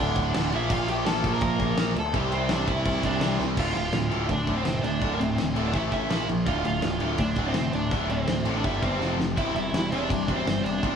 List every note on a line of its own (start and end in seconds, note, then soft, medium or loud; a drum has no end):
0.00 0.15 D1 medium
0.00 0.32 D2 medium
0.00 0.51 D2 loud
0.00 0.34 A2 medium
0.00 0.51 A2 loud
0.00 0.33 D3 medium
0.00 0.52 D3 loud
0.00 0.48 D4 medium
0.00 0.55 D5 loud
0.16 0.33 D1 medium
0.16 kick medium
0.16 crash medium
0.33 0.52 D1 medium
0.33 0.51 D2 medium
0.33 0.52 A2 medium
0.33 snare loud
0.33 crash medium
0.38 0.53 D3 medium
0.52 0.69 A#1 medium
0.52 1.75 A#2 loud
0.52 1.77 F3 loud
0.52 1.78 A#3 loud
0.52 0.70 E4 medium
0.52 0.73 E5 medium
0.52 crash medium
0.70 1.04 A#1 loud
0.70 0.88 F4 medium
0.70 0.90 F5 medium
0.70 kick loud
0.70 crash medium
0.88 1.05 G4 medium
0.88 1.06 G5 medium
0.88 crash medium
1.05 1.23 A#1 loud
1.05 1.58 A#2 medium
1.05 1.59 F3 medium
1.05 1.57 A#3 loud
1.05 1.31 A4 medium
1.05 1.34 A5 loud
1.05 snare loud
1.05 crash loud
1.24 1.41 A#1 loud
1.24 kick loud
1.24 crash medium
1.33 1.92 A#4 medium
1.33 1.92 A#5 medium
1.41 1.58 A#1 loud
1.41 kick loud
1.41 crash medium
1.59 1.76 A#1 medium
1.59 1.95 F3 medium
1.59 1.94 A#3 medium
1.59 kick loud
1.59 crash medium
1.63 1.96 A#2 medium
1.77 1.94 A#1 medium
1.77 1.94 A#2 medium
1.77 1.95 F3 loud
1.77 1.95 A#3 medium
1.77 snare loud
1.77 crash medium
1.96 2.13 D2 medium
1.96 2.14 A4 medium
1.96 crash medium
2.00 2.16 A5 medium
2.14 2.48 C2 loud
2.14 3.38 C3 medium
2.14 3.39 G3 loud
2.14 3.37 C4 loud
2.14 2.31 G4 medium
2.14 2.33 G5 medium
2.14 kick loud
2.14 crash medium
2.32 2.49 C4 medium
2.32 2.51 C5 medium
2.32 crash medium
2.49 2.67 C2 loud
2.49 2.67 D4 medium
2.49 2.68 D5 medium
2.49 snare loud
2.49 crash medium
2.66 2.85 C2 medium
2.66 3.19 C3 medium
2.66 3.21 G3 medium
2.66 3.20 C4 medium
2.66 3.36 E4 medium
2.66 3.36 E5 medium
2.66 kick loud
2.66 crash medium
2.85 3.03 C2 medium
2.85 kick loud
2.85 crash medium
3.03 3.21 C2 medium
3.03 3.38 D4 medium
3.03 3.38 D5 loud
3.03 kick medium
3.03 crash medium
3.20 3.39 C2 medium
3.20 3.55 C3 medium
3.20 3.57 G3 medium
3.20 snare loud
3.20 crash medium
3.24 3.58 C4 medium
3.38 3.56 C2 medium
3.38 3.57 C3 medium
3.38 3.57 G3 medium
3.38 3.56 C4 medium
3.38 snare medium
3.57 3.74 D1 loud
3.57 3.75 D2 medium
3.57 3.75 A2 medium
3.57 3.75 D3 loud
3.57 3.74 F4 medium
3.57 3.76 F5 medium
3.57 kick loud
3.57 crash loud
3.57 crash medium
3.75 3.92 D1 medium
3.75 3.92 D2 medium
3.75 3.92 A2 medium
3.75 4.26 F4 medium
3.75 4.31 F5 loud
3.75 crash soft
3.93 4.10 D1 loud
3.93 4.09 D2 medium
3.93 4.10 A2 medium
3.93 snare loud
3.93 crash medium
4.11 4.28 D1 medium
4.11 4.28 D2 medium
4.11 4.28 A2 medium
4.11 4.29 D3 loud
4.11 crash medium
4.29 4.46 D1 medium
4.29 4.46 D2 medium
4.29 4.46 A2 medium
4.29 5.02 D3 medium
4.29 4.55 D4 medium
4.29 4.58 D5 medium
4.29 kick medium
4.29 crash medium
4.47 4.64 D1 medium
4.47 4.65 D2 loud
4.47 4.65 A2 loud
4.47 4.65 D3 medium
4.47 kick medium
4.47 crash medium
4.56 4.82 C4 medium
4.56 4.85 C5 medium
4.65 4.82 F1 medium
4.65 4.82 D2 medium
4.65 4.82 A2 loud
4.65 snare loud
4.65 crash medium
4.83 5.00 D1 medium
4.83 5.00 D2 medium
4.83 5.00 A2 medium
4.83 5.00 D4 medium
4.83 5.01 D5 medium
4.83 crash medium
5.01 5.18 D1 medium
5.01 5.19 D2 medium
5.01 5.19 A2 medium
5.01 5.20 D3 loud
5.01 5.12 D4 medium
5.01 5.12 D5 medium
5.01 kick loud
5.01 crash medium
5.13 5.20 A#4 medium
5.19 5.36 D1 medium
5.19 5.36 D2 medium
5.19 5.37 A2 medium
5.19 5.62 C4 medium
5.19 5.66 C5 medium
5.19 crash medium
5.38 5.55 D1 medium
5.38 5.55 D2 medium
5.38 5.55 A2 medium
5.38 snare loud
5.38 crash medium
5.56 5.72 D1 medium
5.56 5.73 D2 medium
5.56 5.73 A2 loud
5.56 5.73 D3 loud
5.56 crash medium
5.66 5.74 D4 medium
5.66 5.75 D5 medium
5.73 5.90 A1 medium
5.73 5.91 A2 medium
5.73 5.91 E3 medium
5.73 5.92 A3 loud
5.73 5.80 E4 medium
5.73 5.80 E5 loud
5.73 kick loud
5.73 crash medium
5.91 6.08 A1 medium
5.91 6.09 A2 medium
5.91 6.10 E3 medium
5.91 6.10 A3 loud
5.91 6.26 E4 medium
5.91 6.27 E5 medium
5.91 kick medium
5.91 crash medium
6.10 6.26 A#1 medium
6.10 6.27 A#2 medium
6.10 6.27 F3 medium
6.10 6.28 A#3 loud
6.10 snare loud
6.10 crash medium
6.28 6.45 A#1 medium
6.28 6.45 A#2 medium
6.28 6.45 F3 medium
6.28 crash medium
6.46 6.63 D1 medium
6.46 6.62 D2 loud
6.46 6.63 A2 medium
6.46 6.64 D3 loud
6.46 6.64 F4 medium
6.46 6.65 F5 loud
6.46 kick loud
6.46 crash medium
6.64 6.81 D1 medium
6.64 6.80 D2 medium
6.64 6.81 A2 medium
6.64 7.16 F4 medium
6.64 7.16 F5 medium
6.64 crash medium
6.82 7.00 D1 loud
6.82 6.99 D2 medium
6.82 6.99 A2 medium
6.82 snare loud
6.82 crash medium
7.00 7.18 D1 medium
7.00 7.18 D2 loud
7.00 7.18 A2 loud
7.00 7.18 D3 loud
7.00 crash medium
7.18 7.35 D1 medium
7.18 7.35 D2 medium
7.18 7.36 A2 medium
7.18 7.44 D4 medium
7.18 7.47 D5 medium
7.18 kick loud
7.18 crash medium
7.22 7.92 D3 medium
7.36 7.53 D1 medium
7.36 7.54 D2 medium
7.36 7.55 A2 medium
7.36 7.55 D3 loud
7.36 kick medium
7.36 crash medium
7.48 7.72 C4 medium
7.48 7.72 C5 medium
7.54 7.71 F1 medium
7.54 7.72 D2 medium
7.54 7.72 A2 medium
7.54 snare loud
7.54 crash medium
7.73 7.90 D1 medium
7.73 7.90 D2 medium
7.73 7.90 A2 medium
7.73 8.08 D4 medium
7.73 8.11 D5 medium
7.73 crash soft
7.91 8.08 D1 loud
7.91 8.09 D2 loud
7.91 8.09 A2 loud
7.91 8.09 D3 loud
7.91 kick loud
7.91 crash medium
8.09 8.26 D1 medium
8.09 8.26 D2 medium
8.09 8.26 A2 medium
8.09 8.52 C4 medium
8.09 8.53 C5 medium
8.09 crash medium
8.27 8.44 D1 loud
8.27 8.44 D2 medium
8.27 8.44 A2 loud
8.27 snare loud
8.27 crash medium
8.45 8.62 A1 medium
8.45 8.63 D2 medium
8.45 8.63 A2 medium
8.45 8.63 D3 loud
8.45 crash medium
8.57 8.65 D4 medium
8.57 8.65 D5 medium
8.64 8.81 G1 medium
8.64 8.82 G2 medium
8.64 8.82 D3 loud
8.64 8.82 G3 loud
8.64 8.82 E4 medium
8.64 8.82 E5 medium
8.64 kick loud
8.64 crash medium
8.82 8.99 G1 medium
8.82 9.00 G2 medium
8.82 9.00 D3 medium
8.82 9.00 G3 medium
8.82 9.16 C4 medium
8.82 9.17 C5 medium
8.82 kick medium
8.82 crash medium
9.00 9.17 F1 medium
9.00 9.18 F2 medium
9.00 9.18 C3 medium
9.00 9.19 F3 loud
9.00 snare medium
9.17 9.35 F1 medium
9.17 9.35 F2 medium
9.17 9.36 C3 medium
9.17 snare medium
9.37 9.54 E1 medium
9.37 9.54 C3 loud
9.37 9.55 G3 loud
9.37 9.55 C4 loud
9.37 9.54 E4 medium
9.37 9.55 E5 medium
9.37 kick loud
9.37 crash medium
9.55 9.71 E1 medium
9.55 9.72 C3 medium
9.55 9.72 G3 medium
9.55 9.89 E4 medium
9.55 9.92 E5 medium
9.55 crash medium
9.72 9.89 E1 loud
9.72 9.90 C3 medium
9.72 9.91 G3 medium
9.72 snare loud
9.72 crash medium
9.91 10.08 E1 medium
9.91 10.09 C3 medium
9.91 10.10 G3 loud
9.91 10.10 C4 loud
9.91 10.35 D4 medium
9.91 10.39 D5 medium
9.91 crash medium
10.10 10.26 E1 medium
10.10 10.27 C3 medium
10.10 10.27 G3 medium
10.10 10.85 C4 medium
10.10 kick loud
10.10 crash medium
10.28 10.45 E1 medium
10.28 10.44 C3 loud
10.28 10.45 G3 medium
10.28 10.46 C4 medium
10.28 kick medium
10.28 crash medium
10.36 10.62 C4 medium
10.36 10.65 C5 medium
10.46 10.63 G1 medium
10.46 10.62 C3 medium
10.46 10.63 G3 medium
10.46 snare loud
10.46 crash medium
10.64 10.81 E1 medium
10.64 10.81 C3 medium
10.64 10.81 G3 medium
10.64 10.96 D4 medium
10.64 10.96 D5 medium
10.64 crash medium
10.82 10.96 E1 medium
10.82 10.96 C3 loud
10.82 10.96 G3 medium
10.82 10.96 C4 loud
10.82 kick loud
10.82 crash medium